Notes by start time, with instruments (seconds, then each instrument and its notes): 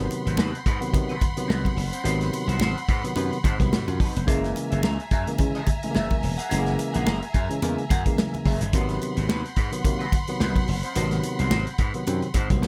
Already playing: tine electric piano C3 D#3 F#3 B3, string section F#5 B5 C6
0.11 muted clean electric guitar stroke, closed hi-hat, muted conga
0.26 slap bass G#1, clean electric guitar C4 F#4 B4, closed hi-hat
0.37 slap bass D#2, clean electric guitar C4 F#4 B4, snare, high conga
0.55 muted clean electric guitar stroke, closed hi-hat
0.66 slap bass G#2, clean electric guitar C4 F#4 B4, kick, closed hi-hat
0.81 tine electric piano C3 D#3 F#3 B3, muted clean electric guitar stroke, closed hi-hat
0.92 tine electric piano C3 D#3 F#3 B3, muted clean electric guitar stroke, kick, closed hi-hat, muted conga, low conga
1.09 clean electric guitar C4 F#4 B4, closed hi-hat
1.21 tine electric piano B3, muted clean electric guitar stroke, kick, closed hi-hat, muted conga, low conga
1.37 tine electric piano C3 D#3 F#3 B3, muted clean electric guitar stroke, closed hi-hat
1.48 slap bass C2, clean electric guitar C4 F#4 B4, snare, high conga
1.65 kick, closed hi-hat, high conga
1.77 slap bass F#1, muted clean electric guitar stroke, open hi-hat
1.92 clean electric guitar C4 F#4 C5, closed hi-hat
2.04 slap bass G#1, tine electric piano C3 D#3 F#3 B3, clean electric guitar C4 F#4 C5, closed hi-hat
2.21 snare, closed hi-hat
2.33 muted clean electric guitar stroke, closed hi-hat, muted conga
2.47 slap bass C2, clean electric guitar C4 F#4 C5, closed hi-hat
2.60 slap bass G#1, clean electric guitar C4 F#4 C5, snare, high conga
2.77 muted clean electric guitar stroke, closed hi-hat
2.88 slap bass G#2, clean electric guitar C4 F#4 B4, kick, closed hi-hat
3.04 tine electric piano C3 D#3 F#3 B3, muted clean electric guitar stroke, closed hi-hat
3.16 slap bass F#2, tine electric piano C3 D#3 F#3 B3, closed hi-hat, muted conga
3.31 muted clean electric guitar stroke, closed hi-hat
3.44 slap bass G#2, tine electric piano F#3 A#3, clean electric guitar C4 F#4 C5, kick, closed hi-hat, muted conga, low conga
3.59 slap bass C2, tine electric piano C3 D#3 F#3 B3, muted clean electric guitar stroke, kick, closed hi-hat
3.72 slap bass G#2, tine electric piano D#4 F#4, muted clean electric guitar stroke, snare, high conga
3.87 slap bass F#2, tine electric piano F4, muted clean electric guitar stroke, closed hi-hat, high conga
3.99 clean electric guitar C4 F#4 B4, tine electric piano C4 D#4, kick, open hi-hat
4.15 slap bass F1, tine electric piano G#3 B3, muted clean electric guitar stroke, closed hi-hat
4.27 slap bass F#1, tine electric piano C#3 E3 G#3 A#3, clean electric guitar G#4 A#4 E5, string section E5 G#5 A#5, kick, closed hi-hat, muted conga
4.44 snare, closed hi-hat
4.55 muted clean electric guitar stroke, closed hi-hat, muted conga
4.71 slap bass F#1, clean electric guitar G#4 A#4 E5, closed hi-hat
4.82 slap bass C#2, clean electric guitar G#4 A#4 E5, snare, high conga
4.99 muted clean electric guitar stroke, closed hi-hat
5.11 slap bass F#2, clean electric guitar G#4 A#4 E5, kick, closed hi-hat
5.26 tine electric piano C#3 E3 G#3 A#3, muted clean electric guitar stroke, closed hi-hat
5.38 tine electric piano C#3 E3 G#3 C#4, muted clean electric guitar stroke, kick, closed hi-hat, muted conga, low conga
5.55 clean electric guitar G#4 A#4 E5, closed hi-hat
5.67 tine electric piano G#3 A#3, muted clean electric guitar stroke, kick, closed hi-hat, muted conga, low conga
5.83 tine electric piano C#3 E3 G#3 A3, muted clean electric guitar stroke, closed hi-hat
5.91 tine electric piano A#3, clean electric guitar G#4, high conga
5.95 slap bass F#1, clean electric guitar A#4 E5, snare
6.11 kick, closed hi-hat, high conga
6.22 slap bass E1, muted clean electric guitar stroke, open hi-hat
6.38 clean electric guitar G#4 A#4 F#5, closed hi-hat
6.49 slap bass F#1, tine electric piano C#3 E3 G#3 A3, clean electric guitar G#4 A#4 F#5, closed hi-hat, muted conga
6.59 tine electric piano A#3
6.66 snare, closed hi-hat
6.79 muted clean electric guitar stroke, closed hi-hat, muted conga
6.94 slap bass A#1, clean electric guitar G#4 A#4 F#5, closed hi-hat
7.06 slap bass F#1, clean electric guitar G#4 A#4 F#5, snare, high conga
7.21 muted clean electric guitar stroke, closed hi-hat
7.33 slap bass F#2, clean electric guitar G#4 A#4 E5, kick, closed hi-hat
7.49 tine electric piano C#3 E3 G#3 C#4, muted clean electric guitar stroke, closed hi-hat
7.62 slap bass E2, tine electric piano C#3 E3 G#3 A#3, closed hi-hat, muted conga
7.77 muted clean electric guitar stroke, closed hi-hat
7.89 slap bass F#2, tine electric piano G#3 A#3, clean electric guitar G#4 A#4 F#5, kick, closed hi-hat, muted conga, low conga
8.05 tine electric piano C#3 E3 G#3 A#3, muted clean electric guitar stroke, kick, closed hi-hat
8.17 muted clean electric guitar stroke, snare, high conga
8.33 muted clean electric guitar stroke, closed hi-hat, high conga
8.45 slap bass F#1, clean electric guitar G#4 A#4 E5, kick, open hi-hat
8.61 slap bass F#1, muted clean electric guitar stroke, closed hi-hat
8.73 slap bass G#1, tine electric piano C3 D#3 F#3 A#3, clean electric guitar C4 F#4 B4, string section F#5 B5 C6, kick, closed hi-hat, muted conga
8.81 tine electric piano B3
8.89 snare, closed hi-hat
9.01 muted clean electric guitar stroke, closed hi-hat, muted conga
9.16 slap bass G#1, clean electric guitar C4 F#4 B4, closed hi-hat
9.29 slap bass D#2, clean electric guitar C4 F#4 B4, snare, high conga
9.44 muted clean electric guitar stroke, closed hi-hat
9.56 slap bass G#2, clean electric guitar C4 F#4 B4, kick, closed hi-hat
9.72 tine electric piano C3 D#3 F#3 B3, muted clean electric guitar stroke, closed hi-hat
9.84 tine electric piano C3 D#3 F#3 A#3, muted clean electric guitar stroke, kick, closed hi-hat, muted conga, low conga
9.99 clean electric guitar C4 F#4 B4, closed hi-hat
10.12 muted clean electric guitar stroke, kick, closed hi-hat, muted conga, low conga
10.27 tine electric piano C3 D#3 F#3 B3, muted clean electric guitar stroke, closed hi-hat
10.40 slap bass C2, clean electric guitar C4 F#4 B4, snare, high conga
10.56 kick, closed hi-hat, high conga
10.67 slap bass F#1, muted clean electric guitar stroke, open hi-hat
10.83 clean electric guitar C4 F#4 C5, closed hi-hat
10.95 slap bass G#1, tine electric piano B2 D#3 F#3 B3, clean electric guitar C4 F#4 C5, closed hi-hat, muted conga
11.02 tine electric piano C3
11.11 snare, closed hi-hat
11.23 muted clean electric guitar stroke, closed hi-hat, muted conga
11.39 slap bass C2, clean electric guitar C4 F#4 C5, closed hi-hat
11.50 slap bass G#1, clean electric guitar C4 F#4 C5, snare, high conga
11.67 muted clean electric guitar stroke, closed hi-hat
11.78 slap bass G#2, clean electric guitar C4 F#4 B4, kick, closed hi-hat
11.94 tine electric piano C3 D#3 F#3 B3, muted clean electric guitar stroke, closed hi-hat
12.06 slap bass F#2, tine electric piano C3 D#3 F#3 C4, closed hi-hat, muted conga
12.22 muted clean electric guitar stroke, closed hi-hat
12.34 slap bass G#2, tine electric piano B3, clean electric guitar C4 F#4 C5, kick, closed hi-hat, muted conga, low conga
12.50 slap bass C2, tine electric piano C3 D#3 F#3 A#3, muted clean electric guitar stroke, kick, closed hi-hat
12.57 tine electric piano B3
12.62 slap bass D#2, muted clean electric guitar stroke, snare, high conga